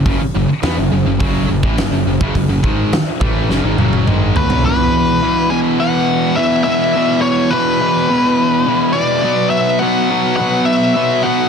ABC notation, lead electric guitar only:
X:1
M:4/4
L:1/8
Q:1/4=104
K:Emix
V:1 name="Lead electric guitar"
z8 | z6 z B | B3 g f2 e e- | e c B4- B d- |
d e f2 f e2 f |]